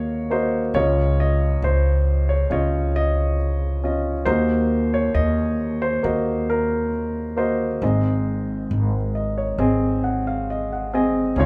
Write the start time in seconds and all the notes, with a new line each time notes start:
Already playing: D#2 D#3 A#3 F#4 C#5 D#5 F5
0.30 A#3 F#4 C5 D#5
0.74 C#2 C#3 C#4 F4 C#5 D#5
1.20 D#5
1.62 C#2 C5
2.29 C#5
2.50 C#2 C#4 F4 C#5 D#5
2.96 D#5
3.84 C#4 F4 D#5
4.26 D#2 D#3 A#3 F#4 C5 D#5
4.94 C#5
5.14 D#2 D#5
5.82 C5
6.03 D#2 A#3 F#4 D#5
6.50 A#4
7.37 A#3 F#4 C5 D#5
7.82 G#1 G#2 C4 G#4 D#5
8.71 G#1
9.15 D#5
9.38 C#5
9.58 G#1 C4 G#4 D#5
10.04 F#5
10.27 F5
10.50 D#5
10.73 F#5
10.94 C4 G#4 D#5 G#5
11.35 C#2 C#3 D#3 G#3 C#4 F4 D#5
11.40 C#5